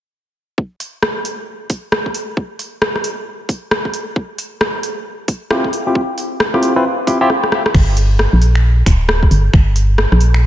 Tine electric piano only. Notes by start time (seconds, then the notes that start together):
5.51 C4 E4 F4 G4
5.87 C4 E4 F4 G4
6.54 C4 E4 F4 G4
6.76 C4 E4 F4 B4
7.07 C4 E4 F4 G4
7.21 C4 E4 F4 G4